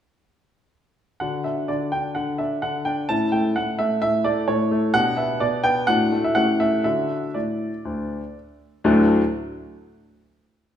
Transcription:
1.20 1.67 D3 soft
1.20 1.43 D4 soft
1.20 3.05 F#4 soft
1.20 1.44 F#5 medium
1.44 1.91 D4 soft
1.44 1.68 E5 medium
1.68 2.14 D3 soft
1.68 1.92 D5 medium
1.92 2.38 D4 soft
1.92 2.15 G5 medium
2.15 2.61 D3 soft
2.15 2.39 F#5 medium
2.38 2.84 D4 soft
2.38 2.62 E5 medium
2.62 3.08 D3 soft
2.62 2.86 F#5 medium
2.85 3.09 D4 soft
2.85 3.09 G5 medium
3.09 3.55 A2 soft
3.09 4.90 C#4 soft
3.09 4.91 E4 soft
3.09 3.32 A5 medium
3.32 3.78 A3 soft
3.32 3.55 G5 medium
3.56 4.01 A2 soft
3.56 3.79 F#5 medium
3.79 4.24 A3 soft
3.79 4.00 E5 medium
4.02 4.47 A2 medium
4.02 4.25 E5 medium
4.24 4.70 A3 soft
4.24 4.48 D5 medium
4.48 4.93 A2 medium
4.48 4.94 C#5 medium
4.71 4.94 A3 medium
4.94 5.39 B2 medium
4.94 5.83 D4 soft
4.94 5.84 G4 soft
4.94 5.17 F#5 loud
5.17 5.63 B3 medium
5.17 5.40 E5 medium
5.40 5.86 B2 medium
5.40 5.64 D5 medium
5.64 5.87 B3 medium
5.64 5.87 G5 medium
5.87 6.34 A2 medium
5.87 6.33 D4 soft
5.87 6.33 F#4 soft
5.87 6.23 F#5 loud
6.12 6.35 A3 medium
6.24 6.36 E5 medium
6.35 6.84 A2 medium
6.35 6.82 C#4 soft
6.35 6.82 G4 soft
6.35 6.60 F#5 medium
6.60 6.84 A3 soft
6.60 6.83 E5 medium
6.84 7.20 D3 soft
6.84 7.25 D4 soft
6.84 7.25 F#4 soft
6.84 7.35 E5 medium
7.34 7.70 A2 soft
7.34 8.34 D5 soft
7.85 8.20 D2 soft
8.84 9.12 D2 medium
8.84 9.12 A2 medium
8.84 9.12 F#3 medium
8.84 9.12 A3 medium
8.84 9.12 D4 medium
8.84 9.12 F#4 medium

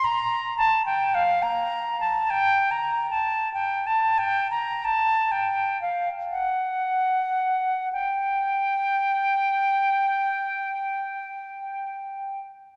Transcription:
0.04 0.57 A#5 medium
0.58 0.85 A5 loud
0.86 1.16 G5 medium
1.15 1.44 F5 medium
1.43 2.00 A#5 medium
2.00 2.32 A5 medium
2.30 2.73 G5 loud
2.71 3.10 A#5 medium
3.11 3.52 A5 medium
3.54 3.88 G5 medium
3.87 4.20 A5 medium
4.18 4.50 G5 medium
4.51 4.86 A#5 medium
4.85 5.33 A5 medium
5.32 5.80 G5 medium
5.82 6.09 F5 medium
6.31 7.89 F#5 medium
7.93 12.40 G5 medium

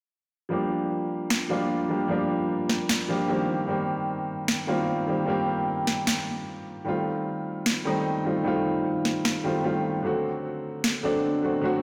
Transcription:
0.49 1.47 F3 medium
0.49 1.47 G3 medium
0.49 1.48 A#3 medium
0.49 1.48 D4 medium
0.53 1.49 G4 medium
1.30 finger snap medium
1.30 snare loud
1.49 1.87 F3 medium
1.49 1.87 G3 medium
1.49 1.88 A#3 medium
1.49 1.88 D4 medium
1.49 1.88 F4 medium
1.89 2.06 F3 medium
1.89 2.07 G3 medium
1.89 2.08 A#3 medium
1.89 2.08 D4 medium
1.89 2.08 G4 medium
2.08 3.06 F3 medium
2.08 3.06 G3 medium
2.08 3.07 A#3 medium
2.08 3.07 D4 medium
2.08 3.08 G4 medium
2.69 snare medium
2.89 finger snap medium
2.89 snare loud
3.08 3.26 F3 medium
3.08 3.27 G3 medium
3.08 3.27 A#3 medium
3.08 3.27 D4 medium
3.08 3.27 G4 medium
3.28 3.65 D#3 medium
3.28 3.66 G3 medium
3.28 3.66 A#3 medium
3.28 3.67 C4 medium
3.28 3.67 G4 medium
3.67 4.65 D#3 medium
3.67 4.65 G3 medium
3.67 4.66 A#3 medium
3.67 4.66 C4 medium
3.71 4.67 G4 medium
4.48 finger snap medium
4.48 snare loud
4.67 5.05 D#3 medium
4.67 5.05 G3 medium
4.67 5.06 A#3 medium
4.67 5.06 C4 medium
4.67 5.06 F4 medium
5.07 5.24 D#3 medium
5.07 5.25 G3 medium
5.07 5.25 A#3 medium
5.07 5.26 C4 medium
5.07 5.26 G4 medium
5.26 6.24 D#3 medium
5.26 6.24 G3 medium
5.26 6.25 A#3 medium
5.26 6.25 C4 medium
5.30 6.26 G4 medium
5.87 snare medium
6.07 finger snap medium
6.07 snare loud
6.85 7.83 D#3 medium
6.85 7.83 G3 medium
6.85 7.84 A3 medium
6.85 7.84 C4 medium
6.89 7.85 F4 medium
7.66 finger snap medium
7.66 snare loud
7.85 8.23 D#3 medium
7.85 8.23 G3 medium
7.85 8.23 A3 medium
7.85 8.24 C4 medium
7.85 8.24 D#4 medium
8.25 8.42 D#3 medium
8.25 8.43 G3 medium
8.25 8.43 A3 medium
8.25 8.44 C4 medium
8.25 8.44 F4 medium
8.44 9.42 D#3 medium
8.44 9.42 G3 medium
8.44 9.43 A3 medium
8.44 9.43 C4 medium
8.44 9.44 F4 medium
9.05 snare medium
9.25 finger snap medium
9.25 snare loud
9.44 9.62 D#3 medium
9.44 9.62 G3 medium
9.44 9.62 A3 medium
9.44 9.63 C4 medium
9.44 9.63 F4 medium
9.64 10.02 D#3 medium
9.64 10.02 G3 medium
9.64 10.02 A3 medium
9.64 10.03 C4 medium
9.64 10.03 F4 medium
10.03 11.01 D3 medium
10.03 11.01 F#3 medium
10.03 11.02 A3 medium
10.03 11.02 C4 medium
10.03 11.03 F#4 medium
10.84 finger snap medium
10.84 snare loud
11.03 11.41 D3 medium
11.03 11.41 F#3 medium
11.03 11.41 A3 medium
11.03 11.42 C4 medium
11.03 11.42 D4 medium
11.43 11.60 D3 medium
11.43 11.61 F#3 medium
11.43 11.61 A3 medium
11.43 11.61 C4 medium
11.43 11.62 F#4 medium
11.61 11.82 D3 medium
11.61 11.82 F#3 medium
11.61 11.82 A3 medium
11.61 11.82 C4 medium
11.65 11.82 F#4 medium

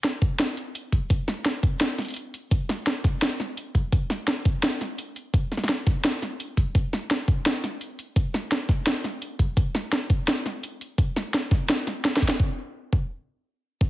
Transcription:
0.04 snare medium
0.04 closed hi-hat medium
0.22 kick loud
0.22 closed hi-hat medium
0.40 snare loud
0.40 closed hi-hat medium
0.57 closed hi-hat medium
0.75 closed hi-hat medium
0.92 kick medium
0.92 closed hi-hat medium
1.10 kick loud
1.10 closed hi-hat medium
1.28 snare medium
1.46 snare medium
1.46 closed hi-hat medium
1.63 kick loud
1.63 closed hi-hat medium
1.81 snare loud
1.81 closed hi-hat medium
1.98 snare soft
1.98 closed hi-hat soft
2.02 closed hi-hat soft
2.05 closed hi-hat soft
2.08 closed hi-hat soft
2.10 closed hi-hat medium
2.14 closed hi-hat medium
2.16 closed hi-hat medium
2.34 closed hi-hat medium
2.51 kick loud
2.51 closed hi-hat medium
2.69 snare medium
2.87 snare medium
2.87 closed hi-hat medium
3.04 kick loud
3.04 snare soft
3.04 closed hi-hat medium
3.22 snare loud
3.22 closed hi-hat medium
3.25 closed hi-hat medium
3.27 closed hi-hat soft
3.29 closed hi-hat soft
3.40 snare soft
3.57 closed hi-hat medium
3.75 kick medium
3.75 closed hi-hat medium
3.92 kick loud
3.92 closed hi-hat medium
4.10 snare soft
4.28 snare medium
4.28 closed hi-hat medium
4.45 kick loud
4.45 closed hi-hat medium
4.63 snare loud
4.63 closed hi-hat medium
4.81 snare soft
4.81 closed hi-hat medium
4.98 closed hi-hat medium
5.16 closed hi-hat medium
5.34 kick loud
5.34 closed hi-hat medium
5.52 snare soft
5.57 snare soft
5.64 snare soft
5.69 snare medium
5.69 closed hi-hat medium
5.87 kick loud
5.87 snare soft
5.87 closed hi-hat medium
6.05 snare loud
6.05 closed hi-hat medium
6.22 snare soft
6.22 closed hi-hat medium
6.40 closed hi-hat medium
6.57 kick medium
6.57 closed hi-hat medium
6.75 kick loud
6.75 closed hi-hat medium
6.93 snare soft
7.11 snare medium
7.11 closed hi-hat medium
7.28 kick loud
7.28 closed hi-hat medium
7.46 snare loud
7.46 closed hi-hat medium
7.64 snare soft
7.64 closed hi-hat medium
7.81 closed hi-hat medium
7.99 closed hi-hat medium
8.16 kick loud
8.16 closed hi-hat medium
8.34 snare medium
8.52 snare medium
8.52 closed hi-hat medium
8.69 kick loud
8.69 snare soft
8.69 closed hi-hat medium
8.87 snare loud
8.87 closed hi-hat medium
9.04 snare soft
9.04 closed hi-hat medium
9.22 closed hi-hat medium
9.39 kick medium
9.39 closed hi-hat medium
9.57 kick loud
9.57 closed hi-hat medium
9.75 snare medium
9.93 snare medium
9.93 closed hi-hat medium
10.10 kick loud
10.10 closed hi-hat medium
10.28 snare loud
10.28 closed hi-hat medium
10.46 snare soft
10.46 closed hi-hat medium
10.63 closed hi-hat medium
10.81 closed hi-hat medium
10.98 kick loud
10.98 closed hi-hat medium
11.16 snare medium
11.16 closed hi-hat soft
11.34 snare medium
11.34 closed hi-hat medium
11.51 kick loud
11.51 snare soft
11.70 snare loud
11.70 closed hi-hat medium
11.87 snare soft
11.87 closed hi-hat medium
12.05 snare medium
12.05 closed hi-hat medium
12.17 snare medium
12.22 kick medium
12.22 closed hi-hat medium
12.28 snare medium
12.40 kick loud
12.93 kick loud
13.81 kick loud

